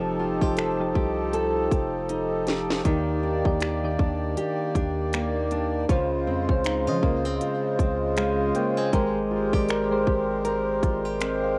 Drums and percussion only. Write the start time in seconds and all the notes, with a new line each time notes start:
0.41 kick
0.57 finger snap, closed hi-hat
0.95 kick
1.33 closed hi-hat
1.71 kick, closed hi-hat
2.09 closed hi-hat
2.47 snare, closed hi-hat
2.70 snare
2.85 kick, closed hi-hat
3.45 kick
3.60 finger snap, closed hi-hat
3.99 kick
4.37 closed hi-hat
4.75 kick, closed hi-hat
5.13 finger snap, closed hi-hat
5.51 closed hi-hat
5.89 kick, closed hi-hat
6.49 kick
6.65 finger snap, closed hi-hat
7.03 kick
7.41 closed hi-hat
7.79 kick, closed hi-hat
8.17 finger snap, closed hi-hat
8.55 closed hi-hat
8.93 kick, closed hi-hat
9.53 kick
9.68 finger snap, closed hi-hat
10.07 kick
10.45 closed hi-hat
10.83 kick, closed hi-hat
11.21 finger snap, closed hi-hat